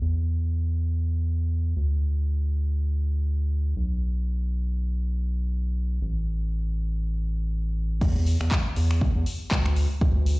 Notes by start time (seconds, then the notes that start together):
0.01 E2
1.76 D2
3.76 B1
6.01 A1
8.01 E2, kick, crash
8.26 open hi-hat
8.41 E2, finger snap
8.51 kick, clap
8.76 E2, open hi-hat
8.91 finger snap
9.01 kick
9.16 E2
9.26 open hi-hat
9.51 D2, kick, clap
9.66 finger snap
9.76 open hi-hat
10.01 D2, kick
10.26 open hi-hat